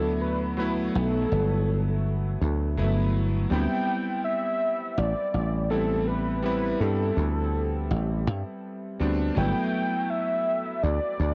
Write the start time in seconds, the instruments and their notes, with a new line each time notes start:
Already playing: slap bass D2, electric grand piano F#3 A3 B3 E4, soft synth lead A4
0.22 soft synth lead B4
0.57 electric grand piano F#3 A3 B3 E4, soft synth lead B4
0.95 slap bass B1, soft synth lead A4
1.32 slap bass G1
2.41 slap bass D2
2.77 slap bass G1, electric grand piano F#3 A3 B3 E4
3.50 slap bass D2, electric grand piano G3 B3 C4 E4, soft synth lead G5
4.24 soft synth lead E5
4.97 slap bass A1, soft synth lead D5
5.34 slap bass A1
5.70 electric grand piano G3 B3 C4 E4, soft synth lead A4
6.07 soft synth lead B4
6.43 electric grand piano G3 B3 C4 E4, soft synth lead B4
6.80 slap bass G2, soft synth lead A4
7.17 slap bass D2
7.91 slap bass A1
8.27 slap bass G2
8.99 slap bass D2, electric grand piano G3 B3 C4 D4
9.35 slap bass G1, electric grand piano F#3 A3 B3 E4, soft synth lead G5
10.10 soft synth lead E5
10.83 slap bass D2, soft synth lead D5
11.20 slap bass D2